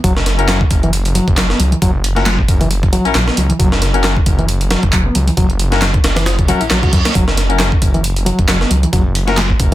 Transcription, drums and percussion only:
0.04 kick loud
0.04 closed hi-hat soft
0.04 closed hi-hat medium
0.17 snare medium
0.26 snare soft
0.26 closed hi-hat medium
0.39 closed hi-hat soft
0.49 snare loud
0.49 clap loud
0.49 closed hi-hat medium
0.49 closed hi-hat soft
0.61 kick loud
0.71 kick loud
0.71 closed hi-hat medium
0.83 closed hi-hat soft
0.93 closed hi-hat soft
0.93 closed hi-hat loud
1.05 closed hi-hat soft
1.15 closed hi-hat medium
1.28 kick medium
1.28 closed hi-hat soft
1.37 snare loud
1.37 clap loud
1.37 closed hi-hat soft
1.37 closed hi-hat medium
1.50 snare medium
1.60 closed hi-hat medium
1.72 closed hi-hat soft
1.82 kick loud
1.82 closed hi-hat soft
1.82 closed hi-hat medium
2.04 closed hi-hat medium
2.16 snare soft
2.16 closed hi-hat soft
2.26 snare loud
2.26 clap loud
2.26 closed hi-hat medium
2.26 closed hi-hat soft
2.39 kick loud
2.48 kick loud
2.48 closed hi-hat medium
2.61 closed hi-hat soft
2.71 closed hi-hat soft
2.71 closed hi-hat medium
2.83 kick loud
2.83 closed hi-hat soft
2.93 closed hi-hat medium
3.05 closed hi-hat soft
3.15 snare loud
3.15 clap loud
3.15 closed hi-hat medium
3.15 closed hi-hat soft
3.28 snare medium
3.37 closed hi-hat medium
3.50 closed hi-hat soft
3.60 kick loud
3.60 closed hi-hat soft
3.60 closed hi-hat medium
3.72 snare medium
3.82 snare soft
3.82 closed hi-hat medium
3.94 closed hi-hat soft
4.04 snare loud
4.04 clap loud
4.04 closed hi-hat soft
4.04 closed hi-hat medium
4.17 kick loud
4.26 kick loud
4.26 closed hi-hat medium
4.39 closed hi-hat soft
4.48 closed hi-hat soft
4.48 closed hi-hat medium
4.61 closed hi-hat soft
4.71 snare loud
4.71 closed hi-hat medium
4.83 kick medium
4.83 closed hi-hat soft
4.93 kick medium
4.93 clap loud
4.93 closed hi-hat soft
4.93 closed hi-hat medium
5.15 closed hi-hat medium
5.28 closed hi-hat soft
5.37 kick loud
5.37 closed hi-hat soft
5.37 closed hi-hat medium
5.50 closed hi-hat soft
5.59 closed hi-hat medium
5.72 snare soft
5.72 closed hi-hat soft
5.82 snare loud
5.82 clap loud
5.82 closed hi-hat soft
5.82 closed hi-hat medium
5.94 kick loud
5.94 closed hi-hat soft
6.04 snare loud
6.04 closed hi-hat medium
6.16 snare loud
6.16 closed hi-hat soft
6.16 closed hi-hat medium
6.26 snare loud
6.26 closed hi-hat soft
6.26 closed hi-hat medium
6.39 kick medium
6.39 closed hi-hat soft
6.48 closed hi-hat medium
6.61 closed hi-hat soft
6.71 snare loud
6.71 clap loud
6.71 closed hi-hat medium
6.71 closed hi-hat soft
6.83 kick medium
6.83 closed hi-hat soft
6.93 kick medium
6.93 closed hi-hat medium
7.05 snare loud
7.05 closed hi-hat soft
7.05 closed hi-hat medium
7.15 kick loud
7.15 closed hi-hat soft
7.15 closed hi-hat medium
7.28 snare medium
7.37 snare soft
7.37 closed hi-hat medium
7.50 closed hi-hat soft
7.59 snare loud
7.59 clap loud
7.59 closed hi-hat soft
7.59 closed hi-hat medium
7.72 kick loud
7.82 kick medium
7.82 closed hi-hat medium
7.94 closed hi-hat soft
8.04 closed hi-hat medium
8.04 closed hi-hat soft
8.16 closed hi-hat soft
8.26 closed hi-hat medium
8.39 kick loud
8.39 closed hi-hat soft
8.48 snare loud
8.48 clap loud
8.48 closed hi-hat medium
8.48 closed hi-hat soft
8.61 snare medium
8.71 closed hi-hat medium
8.83 closed hi-hat soft
8.93 kick loud
8.93 closed hi-hat medium
8.93 closed hi-hat soft
9.15 closed hi-hat medium
9.28 snare soft
9.28 closed hi-hat soft
9.37 snare loud
9.37 clap loud
9.37 closed hi-hat soft
9.37 closed hi-hat medium
9.50 kick loud
9.60 kick loud
9.60 closed hi-hat medium

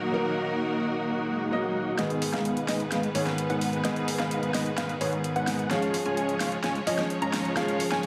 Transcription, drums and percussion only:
1.99 snare soft
1.99 closed hi-hat medium
2.10 closed hi-hat soft
2.22 open hi-hat loud
2.34 snare soft
2.34 closed hi-hat soft
2.45 closed hi-hat medium
2.57 closed hi-hat soft
2.68 snare soft
2.68 open hi-hat medium
2.80 closed hi-hat soft
2.92 snare soft
2.92 closed hi-hat medium
3.03 closed hi-hat soft
3.15 open hi-hat loud
3.27 snare soft
3.27 closed hi-hat soft
3.38 closed hi-hat medium
3.50 closed hi-hat soft
3.61 open hi-hat medium
3.73 closed hi-hat soft
3.85 snare medium
3.85 closed hi-hat medium
3.96 closed hi-hat soft
4.08 open hi-hat loud
4.20 snare soft
4.31 closed hi-hat medium
4.43 closed hi-hat soft
4.54 snare medium
4.54 open hi-hat medium
4.66 closed hi-hat soft
4.78 snare medium
4.78 closed hi-hat medium
4.89 closed hi-hat soft
5.01 open hi-hat loud
5.13 closed hi-hat soft
5.24 closed hi-hat medium
5.36 closed hi-hat soft
5.47 snare medium
5.47 open hi-hat loud
5.59 closed hi-hat soft
5.71 snare medium
5.71 closed hi-hat medium
5.82 closed hi-hat soft
5.94 open hi-hat loud
6.06 closed hi-hat soft
6.17 closed hi-hat medium
6.29 closed hi-hat soft
6.40 snare medium
6.40 open hi-hat medium
6.52 closed hi-hat soft
6.64 snare medium
6.64 closed hi-hat medium
6.75 closed hi-hat soft
6.87 open hi-hat loud
6.99 snare medium
6.99 closed hi-hat soft
7.10 closed hi-hat medium
7.22 closed hi-hat soft
7.33 snare medium
7.33 open hi-hat loud
7.45 closed hi-hat soft
7.57 snare medium
7.57 closed hi-hat medium
7.68 closed hi-hat soft
7.80 open hi-hat loud
7.92 snare medium
7.92 closed hi-hat soft
8.03 closed hi-hat medium

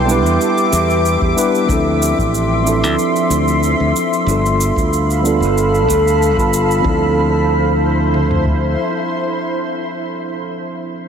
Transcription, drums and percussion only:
0.09 cabasa medium
0.26 cabasa soft
0.41 cabasa soft
0.58 cabasa soft
0.73 cabasa medium
0.90 cabasa soft
1.05 cabasa soft
1.22 kick medium
1.38 cabasa medium
1.55 cabasa soft
1.69 kick loud
1.69 cabasa soft
2.02 cabasa medium
2.18 kick medium
2.18 cabasa soft
2.34 cabasa soft
2.67 cabasa medium
2.84 cabasa soft
2.99 cabasa soft
3.16 cabasa soft
3.31 cabasa medium
3.48 cabasa soft
3.63 cabasa soft
3.96 cabasa medium
4.13 cabasa soft
4.28 cabasa soft
4.46 cabasa soft
4.61 cabasa medium
4.77 kick medium
4.77 cabasa soft
4.93 cabasa soft
5.10 cabasa soft
5.25 cabasa medium
5.42 cabasa soft
5.58 cabasa soft
5.75 cabasa soft
5.88 kick soft
5.88 cabasa medium
6.08 cabasa soft
6.22 cabasa soft
6.38 kick medium
6.38 cabasa soft
6.53 cabasa medium
6.71 cabasa soft
6.85 kick loud
8.14 mid tom medium
8.31 floor tom medium
8.46 kick medium

